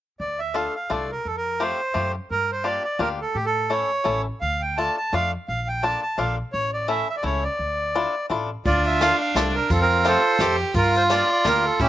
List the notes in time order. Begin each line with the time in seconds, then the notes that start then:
0.20 D2 D5
0.39 E5
0.54 A3 D4 F4 A4 F5
0.76 F5
0.90 C2 A3 D4 F4 A4 D5
1.12 A#4
1.25 F2 A4
1.37 A#4
1.60 A3 C4 F4 G4 C5
1.94 F#2 A3 C4 F4 G4
2.31 G2 A#4
2.52 C5
2.64 A#3 D4 F4 G4 D5
2.84 D5
2.99 D2 A#3 D4 F4 G4 A#4
3.21 A4
3.35 A2 G4
3.45 A4
3.70 A3 C#4 E4 A4 C#5
4.04 A1 A3 C#4 E4 A4
4.41 D2 F5
4.62 G5
4.77 A3 D4 F4 A4 A5
4.97 A5
5.13 F2 A3 D4 F4 A4 F5
5.48 A#1 F5
5.68 G5
5.83 A#3 D4 F4 A4 A5
6.02 A5
6.18 A#1 A#3 D4 F4 A4 F5
6.53 A1 C#5
6.73 D5
6.88 A3 C#4 E4 A4 E5
7.10 E5
7.17 D5
7.23 C#2 A3 C#4 E4 A4 C#5
7.44 D5
7.59 D2
7.95 D4 E4 F4 A4
8.30 A1 D4 E4 F4 A4
8.65 D2 D4 F4 D5, kick, ride
8.85 E5, ride
9.01 A3 D4 F4 A4 F5, snare, ride
9.20 F5
9.35 C2 A3 D4 F4 A4 D5, snare, ride
9.55 A#4
9.70 F2 C4 F4 A4, kick, ride
9.81 A#4
10.04 A3 C4 F4 G4 A4 C5, snare, ride
10.39 F2 A3 C4 F4 G4, snare, ride
10.74 G2 F4 A#4, kick, ride
10.94 C5, ride
11.09 A#3 D4 F4 G4 D5, snare, ride
11.32 D5
11.45 D2 A#3 D4 F4 G4 A#4, snare, ride
11.65 A4
11.80 A2 C#4 E4 G4, kick, ride